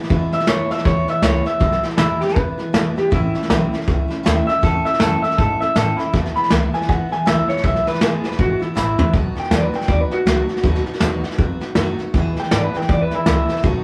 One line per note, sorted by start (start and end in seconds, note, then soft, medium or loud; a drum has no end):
0.03 snare soft
0.08 0.32 E2 medium
0.08 0.32 B2 medium
0.08 0.33 E3 medium
0.08 0.33 G#3 medium
0.08 0.32 B3 loud
0.08 0.30 E4 medium
0.08 kick loud
0.08 snare soft
0.32 0.46 E3 soft
0.32 0.46 G#3 soft
0.32 0.46 B3 medium
0.32 0.47 E4 medium
0.32 0.48 E5 loud
0.32 muted upright bass stroke soft
0.32 snare soft
0.40 snare soft
0.46 0.70 E2 medium
0.46 0.68 F#2 loud
0.46 0.70 B2 medium
0.46 0.70 E3 medium
0.46 0.70 G#3 medium
0.46 0.69 B3 medium
0.46 0.67 E4 medium
0.46 0.71 C#5 loud
0.46 snare loud
0.46 hi-hat pedal medium
0.68 0.83 E3 soft
0.68 0.84 G#3 soft
0.68 0.85 B3 soft
0.68 0.85 E4 soft
0.68 0.85 E5 medium
0.68 muted upright bass stroke soft
0.68 snare soft
0.78 snare soft
0.84 1.07 E2 medium
0.84 1.08 E3 medium
0.84 1.08 G#3 medium
0.84 1.07 B3 medium
0.84 1.06 E4 medium
0.84 1.08 C#5 loud
0.84 kick loud
0.84 snare soft
1.07 1.21 E3 soft
1.07 1.23 G#3 soft
1.07 1.23 B3 soft
1.07 1.23 E4 medium
1.07 1.23 E5 medium
1.07 muted upright bass stroke medium
1.07 snare soft
1.22 1.45 C#2 loud
1.22 1.46 E2 medium
1.22 1.46 B2 medium
1.22 1.46 E3 medium
1.22 1.46 G#3 medium
1.22 1.44 B3 medium
1.22 1.43 E4 medium
1.22 1.46 C#5 medium
1.22 snare loud
1.22 hi-hat pedal medium
1.44 1.60 E3 soft
1.44 1.60 G#3 soft
1.44 1.60 B3 medium
1.44 1.60 E4 medium
1.44 1.83 E5 loud
1.44 snare soft
1.59 1.83 B1 medium
1.59 1.83 E2 medium
1.59 1.83 B2 medium
1.59 1.84 E3 medium
1.59 1.83 G#3 medium
1.59 1.83 B3 medium
1.59 1.81 E4 medium
1.59 kick loud
1.59 snare soft
1.72 snare soft
1.82 1.98 E3 soft
1.82 1.98 G#3 medium
1.82 1.98 B3 soft
1.82 1.98 E4 medium
1.82 muted upright bass stroke medium
1.82 snare soft
1.91 snare soft
1.97 2.20 A1 medium
1.97 2.21 E2 medium
1.97 2.21 B2 medium
1.97 2.22 E3 medium
1.97 2.22 G#3 medium
1.97 2.21 B3 medium
1.97 2.20 E4 loud
1.97 2.19 E4 medium
1.97 snare loud
1.97 hi-hat pedal medium
2.21 2.33 E3 soft
2.21 2.34 G#3 soft
2.21 2.35 B3 soft
2.21 2.36 E4 medium
2.21 2.36 G4 medium
2.21 muted upright bass stroke soft
2.21 snare soft
2.29 snare soft
2.34 2.58 B1 medium
2.34 2.58 E3 medium
2.34 2.59 G#3 medium
2.34 2.58 B3 medium
2.34 2.56 E4 medium
2.34 2.95 B4 loud
2.34 kick loud
2.34 snare soft
2.57 2.73 E3 soft
2.57 2.73 G#3 soft
2.57 2.74 B3 medium
2.57 2.73 E4 medium
2.57 snare soft
2.73 2.95 G#1 medium
2.73 2.96 E2 medium
2.73 2.97 B2 medium
2.73 2.97 E3 medium
2.73 2.96 G#3 medium
2.73 2.95 B3 medium
2.73 2.94 E4 medium
2.73 snare loud
2.73 hi-hat pedal medium
2.96 3.10 E3 soft
2.96 3.10 G#3 medium
2.96 3.12 B3 medium
2.96 3.11 E4 medium
2.96 3.12 G4 medium
2.96 muted upright bass stroke soft
2.96 snare soft
3.10 3.34 A1 medium
3.10 3.34 A2 medium
3.10 3.34 E3 medium
3.10 3.34 A3 medium
3.10 3.34 C#4 medium
3.10 4.22 E4 loud
3.10 3.32 E4 medium
3.10 kick loud
3.10 snare soft
3.34 3.49 A3 soft
3.34 3.50 C#4 medium
3.34 3.49 E4 medium
3.34 muted upright bass stroke medium
3.34 snare soft
3.43 snare soft
3.48 3.71 B1 loud
3.48 3.72 A2 medium
3.48 3.73 E3 medium
3.48 3.73 A3 medium
3.48 3.72 C#4 medium
3.48 3.70 E4 medium
3.48 snare loud
3.48 hi-hat pedal medium
3.72 3.86 A3 soft
3.72 3.88 C#4 medium
3.72 3.87 E4 medium
3.72 muted upright bass stroke medium
3.72 snare soft
3.81 snare soft
3.85 4.09 C#2 medium
3.85 4.09 E3 medium
3.85 4.10 A3 medium
3.85 4.09 C#4 medium
3.85 4.07 E4 medium
3.85 kick loud
3.85 snare soft
4.08 4.23 A3 medium
4.08 4.24 C#4 medium
4.08 4.24 E4 medium
4.08 muted upright bass stroke medium
4.08 snare soft
4.23 4.47 D#2 loud
4.23 4.47 A2 loud
4.23 4.47 E3 medium
4.23 4.48 A3 medium
4.23 4.47 C#4 loud
4.23 4.45 E4 loud
4.23 snare loud
4.23 hi-hat pedal medium
4.46 4.62 A3 soft
4.46 4.62 C#4 soft
4.46 4.62 E4 medium
4.46 4.62 E5 loud
4.46 snare soft
4.61 4.84 E2 medium
4.61 4.85 A2 medium
4.61 4.85 E3 medium
4.61 4.86 A3 medium
4.61 4.85 C#4 medium
4.61 4.83 E4 medium
4.61 4.85 A4 medium
4.61 kick loud
4.61 snare soft
4.84 4.99 A3 soft
4.84 5.00 C#4 medium
4.84 5.00 E4 medium
4.84 5.00 E5 medium
4.84 muted upright bass stroke medium
4.84 snare soft
4.94 snare soft
4.99 5.22 F#2 loud
4.99 5.22 A2 medium
4.99 5.23 E3 medium
4.99 5.23 A3 medium
4.99 5.23 C#4 medium
4.99 5.21 E4 loud
4.99 5.22 A4 loud
4.99 snare loud
4.99 hi-hat pedal medium
5.22 5.38 C#4 soft
5.22 5.37 E4 medium
5.22 5.37 E5 loud
5.22 snare soft
5.31 snare soft
5.37 5.60 G#2 medium
5.37 5.60 E3 medium
5.37 5.61 A3 medium
5.37 5.61 C#4 medium
5.37 5.59 E4 medium
5.37 5.60 A4 loud
5.37 kick loud
5.37 snare soft
5.60 5.75 A3 soft
5.60 5.76 C#4 soft
5.60 5.75 E4 medium
5.60 5.75 E5 loud
5.60 muted upright bass stroke medium
5.60 snare soft
5.75 5.98 A2 medium
5.75 5.97 A2 medium
5.75 5.98 E3 medium
5.75 5.99 A3 medium
5.75 5.98 C#4 loud
5.75 5.96 E4 medium
5.75 5.98 A4 medium
5.75 snare loud
5.75 hi-hat pedal loud
5.97 6.14 C#4 medium
5.97 6.12 E4 loud
5.97 6.13 E4 medium
5.97 snare soft
6.01 6.14 A3 soft
6.13 6.36 E2 medium
6.13 6.35 E2 medium
6.13 6.36 B2 medium
6.13 6.36 E3 medium
6.13 6.36 G#3 medium
6.13 6.35 B3 medium
6.13 6.34 E4 medium
6.13 kick loud
6.13 snare soft
6.26 snare soft
6.35 6.49 E3 soft
6.35 6.49 G#3 soft
6.35 6.50 B3 medium
6.35 6.50 E4 medium
6.35 6.50 B5 loud
6.35 muted upright bass stroke medium
6.35 snare soft
6.44 snare soft
6.49 6.72 C#2 loud
6.49 6.73 E2 medium
6.49 6.73 B2 medium
6.49 6.73 E3 medium
6.49 6.73 G#3 medium
6.49 6.72 B3 loud
6.49 6.71 E4 medium
6.49 snare loud
6.49 hi-hat pedal medium
6.73 6.86 E3 soft
6.73 6.86 G#3 soft
6.73 6.88 B3 medium
6.73 6.88 E4 medium
6.73 6.89 G#5 medium
6.73 muted upright bass stroke medium
6.73 snare soft
6.82 snare soft
6.87 7.10 E3 medium
6.87 7.11 G#3 medium
6.87 7.09 B3 medium
6.87 7.08 E4 medium
6.87 7.11 F#5 loud
6.87 kick loud
6.87 snare soft
7.09 7.25 E3 soft
7.09 7.25 G#3 soft
7.09 7.25 B3 medium
7.09 7.25 E4 medium
7.09 7.26 G#5 loud
7.09 muted upright bass stroke soft
7.09 snare soft
7.25 7.47 C#2 loud
7.25 7.48 E2 medium
7.25 7.48 B2 medium
7.25 7.49 E3 medium
7.25 7.49 G#3 medium
7.25 7.48 B3 medium
7.25 7.47 E4 medium
7.25 7.48 E5 medium
7.25 snare loud
7.25 hi-hat pedal medium
7.48 7.63 E3 soft
7.48 7.63 G#3 soft
7.48 7.64 B3 medium
7.48 7.63 E4 medium
7.48 7.63 C#5 loud
7.48 muted upright bass stroke soft
7.48 snare soft
7.57 snare soft
7.63 7.86 B1 medium
7.63 7.86 E2 medium
7.63 7.86 B2 medium
7.63 7.86 E3 medium
7.63 7.86 G#3 medium
7.63 7.86 B3 medium
7.63 7.84 E4 medium
7.63 7.86 E5 medium
7.63 kick loud
7.63 snare soft
7.76 snare soft
7.85 8.01 E3 soft
7.85 8.01 G#3 soft
7.85 8.01 B3 soft
7.85 8.01 E4 medium
7.85 8.02 B4 medium
7.85 muted upright bass stroke medium
7.85 snare soft
7.94 snare soft
8.01 8.22 G#1 loud
8.01 8.24 E2 medium
8.01 8.24 B2 medium
8.01 8.24 E3 medium
8.01 8.24 G#3 medium
8.01 8.23 B3 medium
8.01 8.22 E4 loud
8.01 8.26 G#4 loud
8.01 snare loud
8.01 hi-hat pedal medium
8.23 8.36 E3 soft
8.23 8.38 G#3 soft
8.23 8.39 B3 medium
8.23 8.38 E4 medium
8.23 8.39 B4 loud
8.23 snare soft
8.32 snare soft
8.37 8.61 G#1 medium
8.37 8.61 E3 medium
8.37 8.61 G#3 medium
8.37 8.59 B3 medium
8.37 8.58 E4 medium
8.37 8.61 F#4 loud
8.37 kick loud
8.37 snare soft
8.59 8.74 E3 soft
8.59 8.75 G#3 soft
8.59 8.75 B3 medium
8.59 8.75 E4 medium
8.59 muted upright bass stroke medium
8.59 snare soft
8.74 8.98 A1 medium
8.74 8.98 E2 medium
8.74 8.98 B2 medium
8.74 8.98 E3 medium
8.74 8.99 G#3 medium
8.74 8.98 B3 medium
8.74 9.12 E4 loud
8.74 8.96 E4 medium
8.74 snare medium
8.74 hi-hat pedal medium
8.98 9.13 E3 medium
8.98 9.14 G#3 soft
8.98 9.13 B3 medium
8.98 9.13 E4 medium
8.98 muted upright bass stroke medium
8.98 floor tom loud
9.13 9.36 B1 medium
9.13 9.36 B2 medium
9.13 9.36 F#3 medium
9.13 9.37 B3 medium
9.13 9.36 D#4 medium
9.13 9.34 F#4 medium
9.13 kick loud
9.13 snare soft
9.35 9.51 B3 soft
9.35 9.51 D#4 soft
9.35 9.51 F#4 medium
9.35 muted upright bass stroke medium
9.35 snare soft
9.40 9.51 G5 medium
9.40 snare soft
9.50 9.72 E2 loud
9.50 9.74 B2 medium
9.50 9.74 F#3 medium
9.50 9.74 B3 medium
9.50 9.73 D#4 medium
9.50 9.70 F#4 medium
9.50 9.63 D5 loud
9.50 snare loud
9.50 hi-hat pedal medium
9.63 9.76 B4 loud
9.72 9.87 B3 soft
9.72 9.88 D#4 soft
9.72 9.88 F#4 medium
9.72 9.88 G5 medium
9.72 muted upright bass stroke medium
9.72 snare soft
9.81 snare soft
9.87 10.10 D#2 medium
9.87 10.10 F#3 medium
9.87 10.11 B3 medium
9.87 10.11 D#4 medium
9.87 10.10 F#4 medium
9.87 10.01 D5 loud
9.87 kick loud
9.87 snare soft
10.01 10.13 B4 medium
10.10 10.26 D#4 medium
10.10 10.26 F#4 medium
10.10 11.23 F#4 loud
10.10 muted upright bass stroke medium
10.10 snare soft
10.15 10.26 B3 soft
10.25 10.47 C#2 loud
10.25 10.49 B2 medium
10.25 10.49 F#3 medium
10.25 10.49 B3 medium
10.25 10.49 D#4 medium
10.25 10.47 F#4 medium
10.25 snare loud
10.25 hi-hat pedal medium
10.48 10.63 D#4 medium
10.48 10.63 F#4 medium
10.48 snare soft
10.52 10.63 B3 soft
10.57 snare soft
10.63 10.85 D#2 medium
10.63 10.86 B2 medium
10.63 10.86 F#3 medium
10.63 10.87 B3 medium
10.63 10.86 D#4 medium
10.63 10.85 F#4 medium
10.63 kick loud
10.63 snare soft
10.75 snare soft
10.86 11.00 B3 medium
10.86 11.01 D#4 medium
10.86 11.01 F#4 medium
10.86 muted upright bass stroke medium
10.86 snare soft
10.93 snare soft
10.99 11.23 E2 medium
10.99 11.23 B2 loud
10.99 11.24 F#3 medium
10.99 11.24 B3 medium
10.99 11.24 D#4 loud
10.99 11.22 F#4 loud
10.99 snare loud
10.99 hi-hat pedal medium
11.23 11.38 B3 soft
11.23 11.39 D#4 medium
11.23 11.39 F#4 medium
11.23 muted upright bass stroke medium
11.23 snare soft
11.31 snare soft
11.38 11.61 F2 medium
11.38 11.61 F#3 medium
11.38 11.62 B3 medium
11.38 11.62 D#4 medium
11.38 11.59 F#4 medium
11.38 kick loud
11.38 snare soft
11.60 11.77 B3 medium
11.60 11.77 D#4 medium
11.60 11.76 F#4 medium
11.60 muted upright bass stroke medium
11.60 snare soft
11.75 11.99 F#2 loud
11.75 11.99 B2 medium
11.75 11.99 F#3 medium
11.75 12.00 B3 medium
11.75 11.99 D#4 medium
11.75 11.97 F#4 loud
11.75 snare loud
11.75 hi-hat pedal medium
11.99 12.14 B3 medium
11.99 12.15 D#4 medium
11.99 12.14 F#4 medium
11.99 muted upright bass stroke medium
11.99 snare soft
12.13 12.36 E2 medium
12.13 12.37 E2 medium
12.13 12.37 B2 medium
12.13 12.37 E3 medium
12.13 12.38 B3 medium
12.13 12.37 E4 loud
12.13 12.36 G#4 loud
12.13 kick loud
12.13 snare soft
12.36 12.51 E3 soft
12.36 12.51 B3 medium
12.36 12.52 E4 medium
12.36 12.52 G#4 medium
12.36 12.52 G5 loud
12.36 muted upright bass stroke medium
12.36 snare soft
12.44 snare soft
12.51 12.74 E2 medium
12.51 12.74 G#2 loud
12.51 12.74 B2 medium
12.51 12.75 E3 loud
12.51 12.74 B3 medium
12.51 12.73 E4 medium
12.51 12.72 G#4 medium
12.51 12.63 D5 loud
12.51 snare loud
12.51 hi-hat pedal medium
12.64 12.76 B4 loud
12.73 12.87 E3 soft
12.73 12.88 B3 medium
12.73 12.89 E4 soft
12.73 12.89 G#4 medium
12.73 12.89 G5 loud
12.73 muted upright bass stroke medium
12.73 snare soft
12.82 snare soft
12.88 13.11 E2 medium
12.88 13.11 E3 medium
12.88 13.12 B3 medium
12.88 13.12 E4 medium
12.88 13.10 G#4 medium
12.88 13.01 D5 loud
12.88 kick loud
12.88 snare soft
13.02 13.14 B4 loud
13.11 13.26 E3 soft
13.11 13.26 B3 medium
13.11 13.27 E4 medium
13.11 13.63 E4 loud
13.11 13.26 G#4 medium
13.11 muted upright bass stroke medium
13.11 snare soft
13.26 13.49 C#2 loud
13.26 13.49 E2 medium
13.26 13.50 B2 medium
13.26 13.50 E3 medium
13.26 13.49 B3 medium
13.26 13.48 E4 medium
13.26 13.47 G#4 medium
13.26 snare loud
13.26 hi-hat pedal medium
13.48 13.63 E3 medium
13.48 13.63 B3 medium
13.48 13.64 E4 medium
13.48 13.63 G#4 medium
13.48 muted upright bass stroke medium
13.48 snare soft
13.57 snare soft
13.63 13.84 B1 loud
13.63 13.84 B2 medium
13.63 13.84 F#3 medium
13.63 13.84 B3 medium
13.63 13.84 D#4 loud
13.63 13.84 F#4 loud
13.63 kick loud
13.63 snare soft